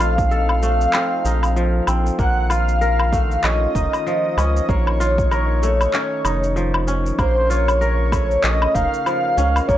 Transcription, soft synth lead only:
0.00 0.32 F5 loud
0.32 1.84 F5 loud
2.19 2.45 F#5 loud
2.45 2.52 F#5 medium
2.50 3.45 F5 loud
3.44 4.71 D#5 loud
4.69 5.32 C#5 loud
5.32 6.84 C#5 medium
7.19 7.51 C5 loud
7.50 8.44 C#5 loud
8.43 8.76 D#5 loud
8.74 9.67 F5 loud
9.68 9.78 C#5 loud

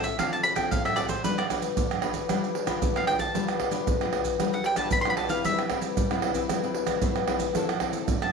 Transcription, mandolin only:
0.04 0.18 E5 medium
0.19 0.32 F5 medium
0.33 0.43 A5 medium
0.43 0.55 B5 loud
0.56 0.70 G5 medium
0.71 0.84 F5 medium
0.85 0.98 E5 medium
0.96 1.09 D5 medium
1.09 1.23 C5 medium
1.24 1.37 B4 medium
1.38 1.46 D5 medium
2.97 3.07 F5 medium
3.07 3.19 G5 medium
3.20 3.70 A5 medium
4.54 4.65 F#5 medium
4.66 4.77 G5 loud
4.77 4.91 A5 medium
4.92 5.01 B5 medium
5.01 5.09 C6 medium
5.10 5.17 B5 medium
5.17 5.31 A5 medium
5.30 5.44 F5 medium
5.45 5.61 E5 medium
8.22 8.32 A5 medium

